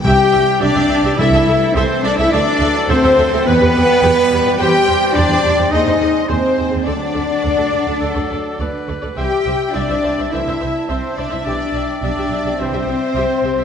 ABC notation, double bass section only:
X:1
M:4/4
L:1/16
Q:1/4=105
K:Clyd
V:1 name="Double bass section" clef=bass
C,, z C,, z C,, C,, C,, C,, C,, C,, C,, z C,, z C,, C,, | D,, z D,, z D,, D,, D,, D,, E,, E,, E,, z E,, z E,, E,, | E,, z E,, z E,, E,, E,, E,, _E,, E,, E,, z E,, z E,, E,, | D,, z D,, z D,, D,, D,, D,, D,, D,, D,, z D,, z D,, D,, |
C,, z C,, z C,, C,, C,, C,, C,, C,, C,, z C,, z C,, C,, | B,,, z B,,, z B,,, B,,, B,,, B,,, C,, C,, C,, z C,, z C,, C,, |]